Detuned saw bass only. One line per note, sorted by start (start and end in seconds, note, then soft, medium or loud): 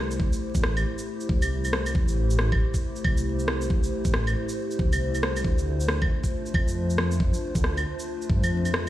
0.00 0.31 C2 loud
0.55 0.85 A1 loud
1.29 1.42 D2 medium
1.43 1.94 C2 medium
1.95 2.60 A1 medium
3.05 3.82 C2 medium
4.05 4.35 A1 medium
4.79 4.92 D2 medium
4.93 5.44 C2 medium
5.45 6.10 D2 loud
6.54 7.32 F2 loud
7.55 7.85 D2 medium
8.30 8.42 G2 medium
8.43 8.89 F2 medium